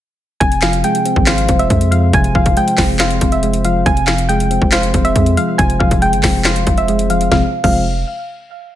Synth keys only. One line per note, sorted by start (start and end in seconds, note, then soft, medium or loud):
0.41 1.49 C3 loud
0.62 1.70 F3 medium
0.84 1.69 G#3 medium
1.05 1.48 C4 medium
1.27 2.35 C5 loud
1.49 2.57 C4 medium
1.70 2.55 G#3 medium
1.92 2.34 F3 medium
2.14 3.21 C3 loud
2.35 3.43 F3 medium
2.57 3.42 G#3 medium
2.79 3.20 C4 medium
3.00 3.86 C5 loud
3.21 3.86 C4 medium
3.43 3.86 G#3 medium
3.65 3.86 F3 medium
3.86 4.94 C3 loud
4.08 5.16 F3 medium
4.29 5.15 G#3 loud
4.51 4.93 C4 medium
4.72 5.80 C5 loud
4.94 6.02 C4 medium
5.16 6.01 G#3 medium
5.38 5.79 F3 medium
5.59 6.67 C3 medium
5.80 6.88 F3 medium
6.03 6.87 G#3 medium
6.24 6.65 C4 medium
6.45 7.32 C5 medium
6.67 7.30 C4 medium
6.89 7.30 G#3 loud
7.10 7.30 F3 medium
7.32 7.44 C3 medium
7.32 7.44 F3 medium
7.32 7.44 G#3 medium
7.32 7.44 C4 loud
7.64 7.84 C3 medium
7.64 7.84 F3 medium
7.64 7.84 G#3 medium
7.64 7.84 C4 loud